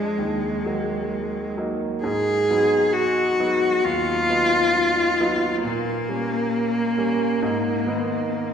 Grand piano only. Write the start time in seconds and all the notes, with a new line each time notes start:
Already playing: F2 F3 G#3 D4
0.18 D#2
0.66 F#3 A#3 D#4
1.58 F#3 A#3 D#4
2.03 G#2
2.50 F#3 B3 D#4
3.40 F#3 B3 D#4
3.84 D#2
4.29 F#3 B3 D#4
5.21 F#3 B3 D#4
5.64 A#2
6.09 G3 A#3 C#4
6.98 G3 A#3 C#4
7.42 G#2
7.87 D#3 B3 D#4